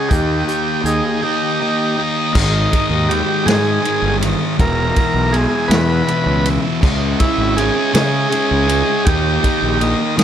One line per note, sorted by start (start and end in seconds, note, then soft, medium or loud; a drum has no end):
0.00 0.15 G#4 medium
0.00 2.30 D#5 medium
0.09 0.42 D#2 medium
0.09 1.24 D#3 medium
0.09 1.23 A#3 medium
0.09 1.21 D#4 medium
0.09 0.45 G4 medium
0.09 2.32 G5 medium
0.09 2.32 A#5 medium
0.09 2.32 D#6 medium
0.09 kick medium
0.09 closed hi-hat medium
0.48 0.83 G4 medium
0.48 closed hi-hat soft
0.84 1.00 D#2 medium
0.84 1.21 D#4 medium
0.84 1.24 G#4 medium
0.84 closed hi-hat medium
1.22 1.59 D#3 medium
1.22 1.60 A#3 medium
1.22 1.61 D#4 medium
1.22 1.97 D#4 medium
1.22 2.03 G4 medium
1.60 2.33 D#3 medium
1.60 1.99 A#3 medium
1.60 1.95 D#4 medium
1.96 2.34 A#3 medium
1.96 2.32 D#4 medium
1.96 3.13 D#4 medium
2.34 2.66 G#1 loud
2.34 3.07 G#2 medium
2.34 2.74 D#3 medium
2.34 2.71 G#3 medium
2.34 4.56 D#5 medium
2.34 4.56 D#6 medium
2.34 kick loud
2.34 crash loud
2.71 3.08 D#3 soft
2.71 3.11 G#3 medium
2.71 kick medium
2.71 ride medium
2.90 3.21 D#2 medium
3.08 3.82 G#2 medium
3.08 3.49 D#3 medium
3.08 3.46 G#3 medium
3.08 3.48 G4 medium
3.08 ride medium
3.46 3.78 G#2 medium
3.46 3.83 D#3 medium
3.46 3.86 G#3 medium
3.46 4.17 G#4 loud
3.46 snare loud
3.46 ride medium
3.83 4.56 G#2 medium
3.83 4.22 D#3 medium
3.83 4.19 G#3 medium
3.83 ride medium
4.02 4.34 G1 medium
4.20 4.57 D#3 medium
4.20 4.60 G#3 medium
4.20 ride medium
4.57 4.90 E1 loud
4.57 5.30 E2 medium
4.57 4.98 B2 medium
4.57 4.95 E3 medium
4.57 5.36 A#4 medium
4.57 9.02 E5 medium
4.57 6.80 E6 medium
4.57 kick loud
4.57 ride loud
4.95 5.32 B2 medium
4.95 5.35 E3 medium
4.95 kick medium
4.95 ride medium
5.14 5.45 B1 medium
5.32 6.06 E2 medium
5.32 5.72 B2 medium
5.32 5.69 E3 medium
5.32 5.71 G#4 medium
5.32 ride medium
5.68 6.01 E2 medium
5.68 6.10 E3 medium
5.68 6.49 B4 loud
5.68 snare loud
5.68 ride medium
5.74 6.08 B2 medium
6.07 6.80 E2 medium
6.07 6.47 B2 medium
6.07 6.43 E3 medium
6.07 ride medium
6.26 6.57 C#2 medium
6.45 6.81 B2 medium
6.45 6.80 E3 medium
6.45 ride medium
6.81 7.14 C#2 loud
6.81 7.55 C#3 medium
6.81 7.22 G#3 medium
6.81 7.19 C#4 medium
6.81 9.04 C#6 medium
6.81 9.04 D#6 medium
6.81 kick loud
6.81 crash loud
7.20 7.57 G#3 medium
7.20 7.58 C#4 medium
7.20 7.58 E4 medium
7.20 kick medium
7.20 ride medium
7.38 7.69 G#1 medium
7.56 8.29 C#3 medium
7.56 7.96 G#3 medium
7.56 7.92 C#4 medium
7.56 7.93 G#4 medium
7.56 ride medium
7.93 8.25 C#3 medium
7.93 8.32 G#3 medium
7.93 8.33 C#4 medium
7.93 9.09 G#4 loud
7.93 snare loud
7.93 ride loud
8.31 9.03 C#3 medium
8.31 8.70 G#3 medium
8.31 8.66 C#4 medium
8.31 ride medium
8.51 8.82 C#2 medium
8.67 9.05 G#3 medium
8.67 9.03 C#4 medium
8.67 ride medium
9.05 9.38 D#2 loud
9.05 9.78 D#3 medium
9.05 9.44 A#3 medium
9.05 9.42 D#4 medium
9.05 9.83 G4 loud
9.05 10.24 D#5 medium
9.05 10.24 G5 medium
9.05 10.24 A#5 medium
9.05 10.24 D#6 medium
9.05 kick loud
9.05 ride loud
9.42 9.80 A#3 medium
9.42 9.83 D#4 medium
9.42 kick medium
9.42 ride medium
9.62 9.93 A#1 medium
9.80 10.24 D#3 medium
9.80 10.19 A#3 medium
9.80 10.16 D#4 medium
9.80 ride medium
10.17 10.24 D#3 medium
10.17 10.24 A#3 medium
10.17 10.24 D#4 medium
10.17 snare loud
10.17 ride loud